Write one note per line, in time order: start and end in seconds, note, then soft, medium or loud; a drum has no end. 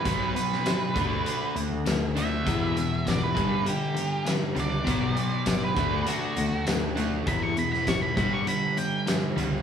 0.00 0.34 B4 medium
0.05 0.34 B1 loud
0.05 0.34 B2 medium
0.05 0.34 F#3 medium
0.05 0.34 B3 medium
0.05 kick loud
0.05 closed hi-hat loud
0.35 0.63 B2 medium
0.35 0.63 F#3 medium
0.35 1.52 B4 loud
0.35 closed hi-hat medium
0.52 snare soft
0.65 0.93 B2 medium
0.65 0.93 F#3 medium
0.65 snare loud
0.65 closed hi-hat medium
0.65 tambourine loud
0.94 1.24 D2 medium
0.94 1.23 D3 medium
0.94 1.24 A3 medium
0.94 1.24 D4 medium
0.94 kick loud
0.94 closed hi-hat medium
1.25 1.54 D3 medium
1.25 1.54 A3 medium
1.25 1.54 D4 loud
1.25 closed hi-hat medium
1.55 1.70 D2 medium
1.55 1.83 D3 medium
1.55 1.83 A3 medium
1.55 closed hi-hat medium
1.71 1.85 D2 medium
1.86 2.43 D2 medium
1.86 2.13 D3 medium
1.86 2.13 A3 medium
1.86 snare loud
1.86 closed hi-hat medium
1.86 tambourine loud
2.15 2.43 D3 medium
2.15 2.44 A3 medium
2.15 2.44 D4 medium
2.15 3.05 E5 loud
2.15 closed hi-hat medium
2.45 2.74 E2 medium
2.45 3.33 E2 loud
2.45 2.74 B2 medium
2.45 2.75 E3 medium
2.45 kick loud
2.45 closed hi-hat medium
2.75 3.03 E2 medium
2.75 3.03 B2 medium
2.75 closed hi-hat medium
3.05 3.33 E2 medium
3.05 3.33 B2 medium
3.05 3.23 D5 medium
3.05 kick medium
3.05 snare loud
3.05 closed hi-hat medium
3.05 tambourine loud
3.23 3.66 B4 medium
3.34 3.63 G2 medium
3.34 3.65 G2 medium
3.34 3.63 D3 medium
3.34 3.64 G3 medium
3.34 kick loud
3.34 closed hi-hat medium
3.64 3.92 G2 medium
3.64 3.93 D3 medium
3.64 closed hi-hat loud
3.69 4.26 G4 loud
3.94 4.22 G2 medium
3.94 4.23 D3 medium
3.94 closed hi-hat medium
4.25 4.53 G2 medium
4.25 4.53 D3 medium
4.25 snare loud
4.25 closed hi-hat medium
4.25 tambourine loud
4.55 4.85 C#2 medium
4.55 4.83 G2 medium
4.55 4.83 D3 medium
4.55 4.84 G3 medium
4.55 closed hi-hat medium
4.59 4.86 G2 medium
4.59 5.46 D5 medium
4.84 5.15 B1 loud
4.84 5.14 B2 medium
4.84 5.14 F#3 medium
4.84 5.14 B3 medium
4.84 kick loud
4.84 closed hi-hat medium
5.15 5.43 B2 medium
5.15 5.43 F#3 medium
5.15 closed hi-hat medium
5.46 5.73 B2 medium
5.46 5.74 F#3 medium
5.46 5.62 D5 loud
5.46 kick medium
5.46 snare loud
5.46 closed hi-hat medium
5.46 tambourine loud
5.64 6.07 B4 medium
5.76 6.05 D2 medium
5.76 6.05 D3 medium
5.76 6.05 A3 loud
5.76 6.06 D4 loud
5.76 kick loud
5.76 closed hi-hat medium
6.07 6.35 D3 medium
6.07 6.35 A3 loud
6.07 6.35 D4 loud
6.07 6.66 F#4 loud
6.07 closed hi-hat loud
6.37 6.51 D2 loud
6.37 6.65 D3 medium
6.37 6.65 A3 medium
6.37 closed hi-hat medium
6.52 6.66 D2 medium
6.67 7.24 D2 loud
6.67 6.94 D3 medium
6.67 6.94 A3 medium
6.67 snare loud
6.67 closed hi-hat medium
6.67 tambourine loud
6.95 7.24 D3 medium
6.95 7.24 A3 medium
6.95 7.24 D4 medium
6.95 closed hi-hat medium
7.27 8.13 E2 loud
7.27 7.55 E2 medium
7.27 7.55 B2 medium
7.27 7.55 E3 loud
7.27 7.42 B5 loud
7.27 kick loud
7.27 closed hi-hat medium
7.43 7.57 C#6 loud
7.56 7.83 E2 medium
7.56 7.84 B2 medium
7.56 7.71 B5 loud
7.56 closed hi-hat medium
7.72 7.88 B5 loud
7.72 snare soft
7.87 8.14 E2 medium
7.87 8.14 B2 medium
7.87 8.02 C#6 medium
7.87 kick medium
7.87 snare loud
7.87 closed hi-hat medium
7.87 tambourine loud
8.02 8.16 B5 medium
8.17 8.45 G2 medium
8.17 8.45 D3 loud
8.17 8.46 G3 loud
8.17 8.33 B5 loud
8.17 kick loud
8.17 closed hi-hat medium
8.33 8.47 C#6 medium
8.47 8.74 G2 medium
8.47 8.74 D3 medium
8.47 8.77 B5 medium
8.47 closed hi-hat loud
8.77 9.04 G2 medium
8.77 9.04 D3 medium
8.77 9.07 G5 loud
8.77 closed hi-hat medium
9.06 9.33 G2 medium
9.06 9.34 D3 medium
9.06 snare loud
9.06 closed hi-hat loud
9.06 tambourine loud
9.36 9.62 C#2 medium
9.36 9.62 G2 medium
9.36 9.62 D3 medium
9.36 9.62 G3 medium
9.36 closed hi-hat medium
9.40 9.62 G2 medium